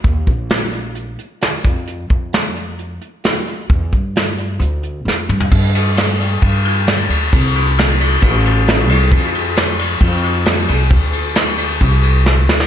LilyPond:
<<
  \new Staff \with { instrumentName = "Upright bass" } { \clef bass \time 4/4 \key ees \lydian \tempo 4 = 133 ees,8 bes,,2 r4 f,8~ | f,8 f,2 r4. | e,8 g,4. d,4 f,8 g,8 | \key a \phrygian g,2 g,4. d,8 |
c,2 a,,4. c,8 | f,2 f,4. c,8 | d,2 c,4. d,8 | }
  \new DrumStaff \with { instrumentName = "Drums" } \drummode { \time 4/4 <hh bd>8 <hh bd>8 <hh sn>8 hh8 hh8 hh8 <hh sn>8 <hh bd>8 | hh8 <hh bd>8 <hh sn>8 hh8 hh8 hh8 <hh sn>8 hh8 | <hh bd>8 <hh bd>8 <hh sn>8 hh8 hh8 hh8 sn8 toml16 tomfh16 | <cymc bd>8 cymr8 <cymr sn>8 cymr8 <bd cymr>8 cymr8 <cymr sn>8 cymr8 |
<bd cymr>8 cymr8 <cymr sn>8 cymr8 <bd cymr>8 cymr8 <cymr sn>8 cymr8 | <bd cymr>8 cymr8 <cymr sn>8 cymr8 <bd cymr>8 cymr8 <cymr sn>8 cymr8 | <bd cymr>8 cymr8 <cymr sn>8 cymr8 <bd cymr>8 cymr8 sn8 sn16 sn16 | }
>>